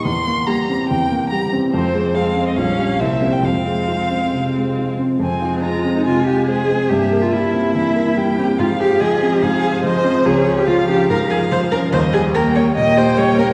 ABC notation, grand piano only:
X:1
M:4/4
L:1/8
Q:1/4=143
K:Fm
V:1 name="Grand piano"
=E,, B, G C E,, B, G C | F,, A, A C B,,, [DG] C,, [CG] | F,, A, F C C, A, F C | F,, F A, C C, F A, C |
G,, B G, C =E, B G, C | A,, A F, C A,, A F, C | D,, A F, D A,, A F, D | E,, G G, B, B,, G G, B, |]